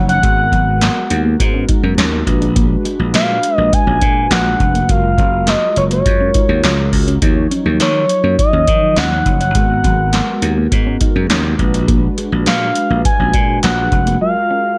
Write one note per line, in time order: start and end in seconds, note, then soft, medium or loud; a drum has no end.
0.00 0.18 F#1 medium
0.00 0.19 F3 medium
0.00 0.22 F#3 medium
0.00 0.19 D#4 medium
0.00 0.19 C#5 medium
0.09 0.21 C#4 medium
0.09 1.21 F#5 loud
0.09 closed hi-hat medium
0.22 0.47 G#1 medium
0.22 2.23 G#3 medium
0.22 0.35 G#3 medium
0.22 2.23 B3 medium
0.22 2.23 F#4 medium
0.22 2.23 A#4 medium
0.22 kick loud
0.22 closed hi-hat medium
0.37 muted clean electric guitar stroke soft
0.52 0.88 G#1 medium
0.52 0.64 F#3 medium
0.52 kick medium
0.52 closed hi-hat medium
0.81 0.93 A#3 medium
0.81 snare loud
0.81 clap medium
0.81 closed hi-hat medium
0.96 muted clean electric guitar stroke soft
1.10 1.35 D#2 medium
1.10 closed hi-hat medium
1.25 1.37 A#3 medium
1.40 1.64 G#2 loud
1.40 muted clean electric guitar stroke soft
1.40 kick loud
1.40 closed hi-hat medium
1.54 1.66 C#4 medium
1.69 1.81 D#4 medium
1.69 kick medium
1.69 closed hi-hat medium
1.83 1.95 F#2 medium
1.98 2.22 D#2 medium
1.98 2.10 C#4 medium
1.98 snare loud
1.98 clap medium
1.98 closed hi-hat medium
2.26 2.75 A#1 loud
2.26 4.85 G#3 medium
2.26 4.85 D4 medium
2.26 4.85 F#4 medium
2.26 4.86 B4 medium
2.26 muted clean electric guitar stroke soft
2.26 kick medium
2.26 closed hi-hat medium
2.42 2.54 D4 medium
2.42 closed hi-hat medium
2.56 2.68 A#3 medium
2.56 kick loud
2.56 closed hi-hat medium
2.70 muted clean electric guitar stroke soft
2.85 2.97 G#3 medium
2.85 closed hi-hat medium
2.99 3.12 A#1 medium
3.14 3.38 A#2 loud
3.14 3.26 A#3 medium
3.14 3.57 F5 loud
3.14 snare medium
3.14 clap medium
3.14 closed hi-hat medium
3.29 muted clean electric guitar stroke soft
3.43 closed hi-hat medium
3.57 3.70 A#1 medium
3.57 3.70 A#3 medium
3.57 3.75 D#5 loud
3.73 4.31 G#5 loud
3.73 kick medium
3.73 closed hi-hat medium
3.87 3.99 A#1 medium
3.87 3.99 C#4 medium
4.01 4.26 A#2 medium
4.01 4.14 D4 medium
4.01 kick medium
4.01 closed hi-hat medium
4.30 4.55 A#1 medium
4.30 4.43 A#3 medium
4.30 4.92 F#5 loud
4.30 snare loud
4.30 clap medium
4.30 closed hi-hat medium
4.60 4.84 F1 medium
4.60 muted clean electric guitar stroke soft
4.60 kick medium
4.60 closed hi-hat medium
4.74 4.87 A#3 medium
4.74 closed hi-hat medium
4.88 5.13 F#1 loud
4.88 7.18 G#3 medium
4.88 7.18 F4 medium
4.88 5.01 F#4 medium
4.88 7.18 F#4 medium
4.88 7.18 A#4 medium
4.88 5.50 F5 loud
4.88 kick loud
4.88 closed hi-hat medium
5.04 muted clean electric guitar stroke soft
5.18 5.54 F#1 medium
5.18 5.30 C#4 medium
5.18 kick medium
5.18 closed hi-hat medium
5.47 5.59 A#3 medium
5.47 5.77 D#5 medium
5.47 snare medium
5.47 clap medium
5.47 closed hi-hat medium
5.62 muted clean electric guitar stroke soft
5.76 6.01 F#1 medium
5.76 5.84 C#5 medium
5.76 closed hi-hat medium
5.91 6.03 A#3 medium
5.91 6.89 C#5 medium
5.91 closed hi-hat medium
6.06 6.30 F#2 loud
6.06 muted clean electric guitar stroke soft
6.06 kick loud
6.06 closed hi-hat medium
6.20 6.32 C#4 medium
6.34 6.47 D#4 medium
6.34 kick medium
6.34 closed hi-hat medium
6.49 6.61 D#2 medium
6.64 6.88 C#2 medium
6.64 6.76 C#4 medium
6.64 snare loud
6.64 clap medium
6.64 closed hi-hat medium
6.93 7.17 C#2 medium
6.93 muted clean electric guitar stroke soft
6.93 kick medium
6.93 open hi-hat medium
7.08 7.20 C#4 medium
7.08 closed hi-hat medium
7.22 7.46 D#2 medium
7.22 9.51 F3 medium
7.22 9.51 F#3 medium
7.22 9.51 D#4 medium
7.22 7.34 D#4 medium
7.22 9.52 C#5 medium
7.22 kick loud
7.22 closed hi-hat medium
7.37 muted clean electric guitar stroke soft
7.51 7.63 C#4 medium
7.51 closed hi-hat medium
7.66 7.78 D#2 medium
7.80 8.04 D#3 loud
7.80 7.93 A#3 medium
7.80 8.35 C#5 medium
7.80 snare loud
7.80 clap medium
7.80 closed hi-hat medium
7.95 muted clean electric guitar stroke soft
8.09 closed hi-hat medium
8.24 8.36 F#2 medium
8.24 8.36 A#3 medium
8.38 8.99 D#5 loud
8.38 muted clean electric guitar stroke soft
8.38 kick medium
8.38 closed hi-hat medium
8.53 8.65 D#2 medium
8.53 8.65 C#4 medium
8.67 8.98 D#3 loud
8.67 8.80 D#4 medium
8.67 kick medium
8.67 closed hi-hat medium
8.96 9.21 D#2 medium
8.96 9.09 C#4 medium
8.96 9.40 F#5 loud
8.96 snare loud
8.96 clap medium
8.96 closed hi-hat medium
9.26 9.50 F#1 loud
9.26 muted clean electric guitar stroke soft
9.26 kick medium
9.26 closed hi-hat medium
9.40 9.53 C#4 medium
9.40 10.53 F#5 loud
9.40 closed hi-hat medium
9.55 9.79 G#1 medium
9.55 11.55 G#3 medium
9.55 9.67 G#3 medium
9.55 11.55 B3 medium
9.55 11.55 F#4 medium
9.55 11.55 A#4 medium
9.55 kick loud
9.55 closed hi-hat medium
9.70 muted clean electric guitar stroke soft
9.84 10.20 G#1 medium
9.84 9.96 F#3 medium
9.84 kick medium
9.84 closed hi-hat medium
10.13 10.26 A#3 medium
10.13 snare medium
10.13 clap medium
10.13 closed hi-hat medium
10.28 muted clean electric guitar stroke soft
10.42 10.66 D#2 medium
10.42 closed hi-hat medium
10.58 10.69 A#3 medium
10.72 10.96 G#2 medium
10.72 muted clean electric guitar stroke soft
10.72 kick loud
10.72 closed hi-hat medium
10.86 10.98 C#4 medium
11.01 11.13 D#4 medium
11.01 kick medium
11.01 closed hi-hat medium
11.16 11.28 F#2 medium
11.30 11.54 D#2 medium
11.30 11.42 C#4 medium
11.30 snare loud
11.30 clap medium
11.30 closed hi-hat medium
11.59 12.07 A#1 loud
11.59 14.17 G#3 medium
11.59 14.17 D4 medium
11.59 14.17 F#4 medium
11.59 14.18 B4 medium
11.59 muted clean electric guitar stroke soft
11.59 kick medium
11.59 closed hi-hat medium
11.74 11.86 D4 medium
11.74 closed hi-hat medium
11.88 12.00 A#3 medium
11.88 kick loud
11.88 closed hi-hat medium
12.03 muted clean electric guitar stroke soft
12.18 12.30 G#3 medium
12.18 closed hi-hat medium
12.32 12.44 A#1 medium
12.46 12.71 A#2 medium
12.46 12.59 A#3 medium
12.46 13.01 F5 medium
12.46 snare loud
12.46 clap medium
12.46 closed hi-hat medium
12.61 muted clean electric guitar stroke soft
12.75 closed hi-hat medium
12.90 13.02 A#1 medium
12.90 13.02 A#3 medium
13.05 13.59 G#5 loud
13.05 muted clean electric guitar stroke soft
13.05 kick loud
13.05 closed hi-hat medium
13.20 13.31 A#1 medium
13.20 13.32 C#4 medium
13.34 13.58 A#2 medium
13.34 13.46 D4 medium
13.34 kick medium
13.34 closed hi-hat medium
13.63 13.87 A#1 medium
13.63 13.75 A#3 medium
13.63 14.17 F#5 medium
13.63 snare loud
13.63 clap medium
13.63 closed hi-hat medium
13.92 14.16 F1 medium
13.92 muted clean electric guitar stroke soft
13.92 kick medium
13.92 closed hi-hat medium
14.07 14.19 A#3 medium
14.07 closed hi-hat medium
14.20 14.33 F#3 medium
14.20 14.78 G#3 medium
14.20 14.78 F4 medium
14.20 14.78 F#4 medium
14.20 14.78 A#4 medium
14.20 14.78 F5 loud
14.36 muted clean electric guitar stroke soft
14.51 14.62 C#4 medium